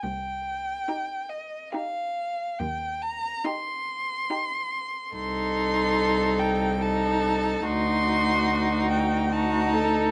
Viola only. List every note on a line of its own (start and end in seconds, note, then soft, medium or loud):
0.88 1.53 D#4 soft
1.74 2.39 D#4 soft
3.44 4.09 D#4 soft
4.30 4.94 D#4 soft
5.14 6.77 D#4 medium
6.82 7.63 D#4 medium
7.64 9.29 D#4 medium
9.32 10.11 D#4 medium